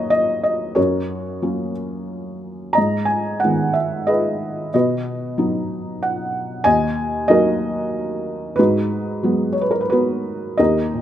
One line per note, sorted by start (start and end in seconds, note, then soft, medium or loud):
0.00 0.73 D#2 medium
0.00 0.73 F#3 soft
0.00 0.73 A#3 soft
0.00 0.73 D#4 medium
0.00 0.76 F#4 medium
0.00 0.76 A#4 medium
0.00 0.79 B4 medium
0.00 0.75 C#5 medium
0.00 0.10 D#5 medium
0.10 0.42 D#5 medium
0.43 0.78 D#5 medium
0.75 2.73 F#2 medium
0.75 1.71 F#4 medium
0.75 1.71 A#4 medium
0.75 1.71 C#5 medium
1.42 2.72 F#3 soft
1.42 2.73 A#3 soft
1.42 2.73 C#4 soft
2.73 3.71 D#5 medium
2.73 3.06 A#5 medium
2.78 4.70 G#2 medium
3.05 3.39 G#5 medium
3.40 4.70 G#3 soft
3.40 3.75 F#5 medium
3.44 4.70 D#3 soft
3.44 4.70 B3 soft
3.73 4.09 E5 medium
4.07 4.69 G#4 medium
4.07 4.69 B4 medium
4.07 4.72 D#5 medium
4.74 6.62 B2 medium
4.74 5.98 F#4 soft
4.74 5.98 B4 soft
4.74 5.98 D#5 medium
5.38 6.61 F#3 soft
5.38 6.61 B3 soft
5.38 6.62 D#4 soft
6.03 6.62 F#5 medium
6.64 8.54 D#2 medium
6.64 7.26 D#5 medium
6.64 7.31 G#5 loud
7.28 8.54 F#3 soft
7.28 8.54 A#3 soft
7.28 8.55 D#4 medium
7.28 8.55 F#4 medium
7.28 8.55 A#4 medium
7.28 8.61 D#5 medium
8.56 10.56 G#2 medium
8.56 9.53 D#4 medium
8.56 9.53 F#4 medium
8.56 9.48 B4 medium
9.23 10.55 F#3 soft
9.23 10.56 G#3 soft
9.23 9.91 B3 medium
9.53 9.62 C#5 medium
9.61 9.72 B4 medium
9.71 9.81 A#4 medium
9.81 9.88 B4 medium
9.90 10.56 B3 medium
9.90 10.56 F#4 medium
9.90 10.61 B4 medium
10.57 11.02 D#2 medium
10.57 11.02 D#4 medium
10.57 11.02 G4 medium
10.57 11.02 A#4 medium
10.57 11.02 D#5 medium
10.94 11.02 A#2 soft